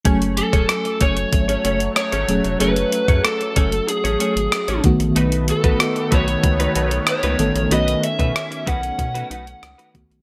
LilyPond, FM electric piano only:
\new Staff \with { instrumentName = "FM electric piano" } { \time 4/4 \key fis \dorian \tempo 4 = 94 <fis a cis' gis''>4. r2 <fis a cis' gis'>8 | <fis a cis' gis'>4. r2 <dis a b fis'>8~ | <dis a b fis'>4 r2 r8 <dis a b a'>8 | <dis a b fis'>4. r2 <dis a b fis'>8 | }